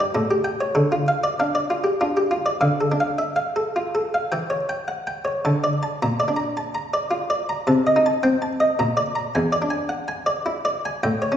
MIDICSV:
0, 0, Header, 1, 2, 480
1, 0, Start_track
1, 0, Key_signature, -1, "minor"
1, 0, Tempo, 617284
1, 584, Time_signature, 3, 2, 24, 8
1, 2027, Tempo, 579151
1, 2507, Tempo, 565504
1, 4907, Tempo, 551978
1, 8267, Tempo, 572519
1, 9518, End_track
2, 0, Start_track
2, 0, Title_t, "Harpsichord"
2, 0, Program_c, 0, 6
2, 1, Note_on_c, 0, 74, 55
2, 112, Note_off_c, 0, 74, 0
2, 114, Note_on_c, 0, 45, 56
2, 115, Note_on_c, 0, 69, 50
2, 234, Note_off_c, 0, 69, 0
2, 239, Note_on_c, 0, 67, 54
2, 340, Note_off_c, 0, 45, 0
2, 346, Note_on_c, 0, 79, 79
2, 356, Note_off_c, 0, 67, 0
2, 470, Note_off_c, 0, 79, 0
2, 471, Note_on_c, 0, 73, 52
2, 583, Note_on_c, 0, 50, 59
2, 585, Note_on_c, 0, 69, 47
2, 589, Note_off_c, 0, 73, 0
2, 714, Note_off_c, 0, 69, 0
2, 716, Note_on_c, 0, 65, 50
2, 822, Note_off_c, 0, 50, 0
2, 841, Note_off_c, 0, 65, 0
2, 841, Note_on_c, 0, 77, 71
2, 961, Note_on_c, 0, 74, 52
2, 964, Note_off_c, 0, 77, 0
2, 1084, Note_off_c, 0, 74, 0
2, 1086, Note_on_c, 0, 62, 47
2, 1088, Note_on_c, 0, 77, 53
2, 1205, Note_on_c, 0, 74, 51
2, 1207, Note_off_c, 0, 77, 0
2, 1324, Note_on_c, 0, 65, 49
2, 1325, Note_off_c, 0, 74, 0
2, 1331, Note_off_c, 0, 62, 0
2, 1430, Note_on_c, 0, 67, 41
2, 1444, Note_off_c, 0, 65, 0
2, 1550, Note_off_c, 0, 67, 0
2, 1563, Note_on_c, 0, 62, 46
2, 1564, Note_on_c, 0, 65, 51
2, 1683, Note_off_c, 0, 65, 0
2, 1687, Note_on_c, 0, 67, 42
2, 1797, Note_on_c, 0, 65, 54
2, 1800, Note_off_c, 0, 67, 0
2, 1810, Note_off_c, 0, 62, 0
2, 1911, Note_on_c, 0, 74, 53
2, 1920, Note_off_c, 0, 65, 0
2, 2027, Note_off_c, 0, 74, 0
2, 2029, Note_on_c, 0, 50, 62
2, 2030, Note_on_c, 0, 77, 65
2, 2193, Note_on_c, 0, 69, 43
2, 2198, Note_off_c, 0, 77, 0
2, 2263, Note_off_c, 0, 50, 0
2, 2284, Note_on_c, 0, 62, 51
2, 2356, Note_on_c, 0, 77, 52
2, 2359, Note_off_c, 0, 69, 0
2, 2506, Note_on_c, 0, 76, 46
2, 2519, Note_off_c, 0, 77, 0
2, 2527, Note_off_c, 0, 62, 0
2, 2656, Note_on_c, 0, 77, 55
2, 2666, Note_off_c, 0, 76, 0
2, 2825, Note_on_c, 0, 69, 52
2, 2826, Note_off_c, 0, 77, 0
2, 2992, Note_off_c, 0, 69, 0
2, 2995, Note_on_c, 0, 65, 57
2, 3154, Note_on_c, 0, 69, 55
2, 3158, Note_off_c, 0, 65, 0
2, 3320, Note_off_c, 0, 69, 0
2, 3320, Note_on_c, 0, 77, 62
2, 3468, Note_on_c, 0, 79, 69
2, 3474, Note_on_c, 0, 52, 57
2, 3476, Note_off_c, 0, 77, 0
2, 3624, Note_on_c, 0, 73, 47
2, 3638, Note_off_c, 0, 79, 0
2, 3706, Note_off_c, 0, 52, 0
2, 3786, Note_on_c, 0, 79, 57
2, 3795, Note_off_c, 0, 73, 0
2, 3945, Note_on_c, 0, 78, 45
2, 3955, Note_off_c, 0, 79, 0
2, 4106, Note_off_c, 0, 78, 0
2, 4108, Note_on_c, 0, 79, 57
2, 4258, Note_on_c, 0, 73, 58
2, 4275, Note_off_c, 0, 79, 0
2, 4422, Note_off_c, 0, 73, 0
2, 4428, Note_on_c, 0, 50, 62
2, 4430, Note_on_c, 0, 81, 76
2, 4588, Note_on_c, 0, 74, 59
2, 4597, Note_off_c, 0, 81, 0
2, 4661, Note_off_c, 0, 50, 0
2, 4750, Note_on_c, 0, 81, 64
2, 4756, Note_off_c, 0, 74, 0
2, 4908, Note_off_c, 0, 81, 0
2, 4917, Note_on_c, 0, 46, 64
2, 4917, Note_on_c, 0, 82, 74
2, 5068, Note_on_c, 0, 74, 54
2, 5081, Note_off_c, 0, 82, 0
2, 5140, Note_on_c, 0, 62, 51
2, 5145, Note_off_c, 0, 46, 0
2, 5212, Note_on_c, 0, 82, 56
2, 5235, Note_off_c, 0, 74, 0
2, 5387, Note_off_c, 0, 82, 0
2, 5392, Note_on_c, 0, 81, 49
2, 5395, Note_off_c, 0, 62, 0
2, 5545, Note_on_c, 0, 82, 60
2, 5549, Note_off_c, 0, 81, 0
2, 5709, Note_on_c, 0, 74, 61
2, 5714, Note_off_c, 0, 82, 0
2, 5858, Note_on_c, 0, 65, 61
2, 5876, Note_off_c, 0, 74, 0
2, 6027, Note_on_c, 0, 74, 60
2, 6031, Note_off_c, 0, 65, 0
2, 6193, Note_on_c, 0, 82, 72
2, 6196, Note_off_c, 0, 74, 0
2, 6349, Note_on_c, 0, 48, 71
2, 6352, Note_off_c, 0, 82, 0
2, 6352, Note_on_c, 0, 81, 88
2, 6519, Note_off_c, 0, 81, 0
2, 6519, Note_on_c, 0, 75, 60
2, 6582, Note_off_c, 0, 48, 0
2, 6602, Note_on_c, 0, 63, 63
2, 6682, Note_off_c, 0, 75, 0
2, 6687, Note_on_c, 0, 81, 66
2, 6837, Note_on_c, 0, 79, 55
2, 6838, Note_on_c, 0, 60, 60
2, 6846, Note_off_c, 0, 81, 0
2, 6847, Note_off_c, 0, 63, 0
2, 6993, Note_off_c, 0, 79, 0
2, 7000, Note_on_c, 0, 81, 70
2, 7086, Note_off_c, 0, 60, 0
2, 7159, Note_on_c, 0, 75, 69
2, 7164, Note_off_c, 0, 81, 0
2, 7316, Note_off_c, 0, 75, 0
2, 7324, Note_on_c, 0, 46, 73
2, 7325, Note_on_c, 0, 82, 85
2, 7478, Note_on_c, 0, 74, 73
2, 7486, Note_off_c, 0, 82, 0
2, 7550, Note_off_c, 0, 46, 0
2, 7639, Note_on_c, 0, 82, 80
2, 7641, Note_off_c, 0, 74, 0
2, 7792, Note_off_c, 0, 82, 0
2, 7809, Note_on_c, 0, 80, 89
2, 7813, Note_on_c, 0, 40, 71
2, 7961, Note_on_c, 0, 74, 65
2, 7964, Note_off_c, 0, 80, 0
2, 8032, Note_off_c, 0, 40, 0
2, 8042, Note_on_c, 0, 62, 65
2, 8116, Note_on_c, 0, 80, 70
2, 8121, Note_off_c, 0, 74, 0
2, 8280, Note_on_c, 0, 78, 65
2, 8281, Note_off_c, 0, 80, 0
2, 8288, Note_off_c, 0, 62, 0
2, 8431, Note_off_c, 0, 78, 0
2, 8438, Note_on_c, 0, 80, 77
2, 8591, Note_on_c, 0, 74, 82
2, 8598, Note_off_c, 0, 80, 0
2, 8755, Note_off_c, 0, 74, 0
2, 8755, Note_on_c, 0, 64, 73
2, 8915, Note_on_c, 0, 74, 73
2, 8917, Note_off_c, 0, 64, 0
2, 9079, Note_off_c, 0, 74, 0
2, 9086, Note_on_c, 0, 80, 88
2, 9237, Note_off_c, 0, 80, 0
2, 9237, Note_on_c, 0, 45, 84
2, 9238, Note_on_c, 0, 79, 101
2, 9392, Note_on_c, 0, 73, 63
2, 9401, Note_off_c, 0, 79, 0
2, 9465, Note_off_c, 0, 45, 0
2, 9477, Note_on_c, 0, 61, 70
2, 9518, Note_off_c, 0, 61, 0
2, 9518, Note_off_c, 0, 73, 0
2, 9518, End_track
0, 0, End_of_file